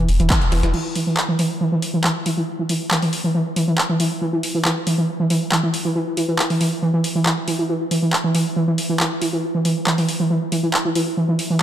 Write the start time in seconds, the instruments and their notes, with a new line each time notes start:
0.08 sub bass E1, closed hi-hat, open hi-hat
0.20 sub bass E1, analog synth lead E3, closed hi-hat
0.30 analog synth lead E3, kick, snare, clap, closed hi-hat
0.41 sub bass E1, snare, closed hi-hat
0.52 sub bass E1, analog synth lead E3, snare, closed hi-hat, open hi-hat
0.63 sub bass E1, analog synth lead E3, snare, closed hi-hat
0.74 analog synth lead E3, crash
0.95 analog synth lead E3, open hi-hat
1.07 analog synth lead E3
1.17 clap
1.28 analog synth lead E3
1.39 analog synth lead E3, open hi-hat
1.61 analog synth lead E3
1.72 analog synth lead E3
1.82 open hi-hat
1.94 analog synth lead E3
2.04 analog synth lead E3, clap
2.26 analog synth lead E3, open hi-hat
2.37 analog synth lead E3
2.59 analog synth lead E3
2.69 analog synth lead E3, open hi-hat
2.91 analog synth lead E3, clap
3.02 analog synth lead E3, open hi-hat
3.13 open hi-hat
3.24 analog synth lead E3
3.35 analog synth lead E3
3.56 analog synth lead E3, open hi-hat
3.68 analog synth lead E3
3.78 clap
3.89 analog synth lead E3
4.00 analog synth lead E3, open hi-hat
4.21 analog synth lead E3
4.33 analog synth lead E3
4.43 open hi-hat
4.55 analog synth lead E3
4.65 analog synth lead E3, clap
4.87 analog synth lead E3, open hi-hat
4.98 analog synth lead E3
5.20 analog synth lead E3
5.30 analog synth lead E3, open hi-hat
5.52 analog synth lead E3, clap
5.63 analog synth lead E3
5.74 open hi-hat
5.85 analog synth lead E3
5.95 analog synth lead E3
6.17 analog synth lead E3, open hi-hat
6.28 analog synth lead E3
6.39 clap
6.50 analog synth lead E3, open hi-hat
6.61 analog synth lead E3, open hi-hat
6.82 analog synth lead E3
6.94 analog synth lead E3
7.04 open hi-hat
7.15 analog synth lead E3
7.26 analog synth lead E3, clap
7.48 analog synth lead E3, open hi-hat
7.59 analog synth lead E3
7.69 analog synth lead E3
7.91 analog synth lead E3, open hi-hat
8.02 analog synth lead E3
8.13 clap
8.24 analog synth lead E3
8.35 analog synth lead E3, open hi-hat
8.56 analog synth lead E3
8.68 analog synth lead E3
8.78 open hi-hat
8.89 analog synth lead E3
9.00 analog synth lead E3, clap
9.22 analog synth lead E3, open hi-hat
9.33 analog synth lead E3
9.55 analog synth lead E3
9.65 analog synth lead E3, open hi-hat
9.87 analog synth lead E3, clap
9.98 analog synth lead E3, open hi-hat
10.09 open hi-hat
10.20 analog synth lead E3
10.30 analog synth lead E3
10.52 analog synth lead E3, open hi-hat
10.63 analog synth lead E3
10.74 clap
10.85 analog synth lead E3
10.95 analog synth lead E3, open hi-hat
11.17 analog synth lead E3
11.29 analog synth lead E3
11.39 open hi-hat
11.50 analog synth lead E3